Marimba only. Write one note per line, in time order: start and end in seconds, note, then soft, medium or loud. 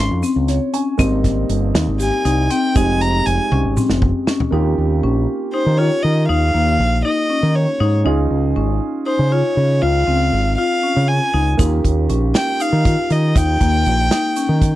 0.00 0.18 C#4 medium
0.23 0.63 C4 medium
0.74 0.94 C#4 medium
0.99 1.39 C4 loud
1.75 1.95 D#4 medium
2.00 2.20 G4 medium
2.25 2.45 D#4 medium
2.50 2.70 C4 medium
2.76 3.16 D#4 medium
3.52 3.72 C#4 medium
3.77 4.17 C4 medium
4.27 4.47 C#4 medium
4.53 4.92 D#4 medium
5.03 5.43 C#4 medium
5.54 5.74 D#4 medium
5.79 6.19 F4 medium
6.29 6.49 D#4 medium
6.54 6.94 A#3 medium
7.05 7.25 D#4 medium
7.30 7.70 C#4 medium
7.80 8.00 D#4 medium
8.06 8.46 D#4 medium
8.56 8.96 C#4 medium
9.07 9.27 D#4 medium
9.32 9.72 F4 medium
9.82 10.02 F4 medium
10.07 10.47 C4 medium
10.58 10.78 F4 medium
10.83 11.23 C#4 medium
11.34 11.54 D#4 medium
11.59 11.99 D#4 medium
12.09 12.49 C#4 medium
12.60 12.80 D#4 medium
12.85 13.25 F4 medium
13.35 13.55 D#4 medium
13.61 14.00 A#3 medium
14.11 14.31 D#4 medium
14.37 14.76 C#4 medium